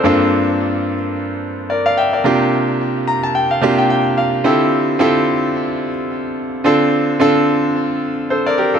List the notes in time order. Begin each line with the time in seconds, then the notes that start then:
Already playing: C5
0.04 G2 A#3 C4 D4 F4 A4
1.70 A#4 D5
1.86 D5 F5
1.98 E5 G5
2.13 A#4 D5
2.24 C3 A#3 D4 F4 G4
3.08 A#5
3.23 A5
3.35 G5
3.51 F5
3.61 C3 A#3 D4 F4 G4
3.78 G5
3.90 G5
4.18 F5
4.44 D3 C4 E4 F4 G4 A4
4.99 D3 C4 E4 F4 G4 A4
6.64 D3 C4 D4 F4 A4
7.19 D3 C4 D4 F4 A4
8.30 A4 C5
8.46 A#4 D5
8.58 G4 A#4
8.74 F4 A4